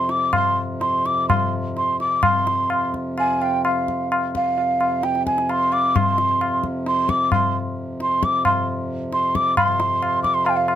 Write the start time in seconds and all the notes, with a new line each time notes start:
Already playing: F2 C3 C6
0.09 D6, tabla te
0.33 C6, tabla na, tabla ge
0.80 C6, tabla te
1.06 D6, tabla te
1.28 C6, tabla na, tabla ge
1.77 C6, tabla te
2.00 D6, tabla te
2.23 F2 C3 C6, tabla na, tabla ge
2.47 tabla te
2.70 tabla na
2.94 tabla ke
3.18 G#5, tabla na
3.42 G5, tabla na
3.65 F5, tabla na
3.88 tabla ke
4.12 tabla na
4.35 F5, tabla ke
4.58 tabla tin
4.81 tabla na
5.03 G5, tabla te
5.15 tabla te
5.26 G#5, tabla ke
5.38 tabla te
5.49 C6, tabla na
5.72 D6, tabla na
5.96 C6, tabla na, tabla ge
6.18 tabla te
6.41 tabla na
6.64 tabla ke
6.86 C6, tabla te
7.09 D6, tabla ke
7.32 C6, tabla na, tabla ge
8.00 C6, tabla te
8.23 D6, tabla ke
8.45 C6, tabla na, tabla ge
9.12 C6, tabla te
9.35 D6, tabla ke
9.57 F2 C3 C6, tabla na, tabla ge
9.80 tabla te
10.03 tabla na
10.23 D6, tabla ke
10.34 C6
10.45 G5, tabla na
10.57 F5
10.68 tabla na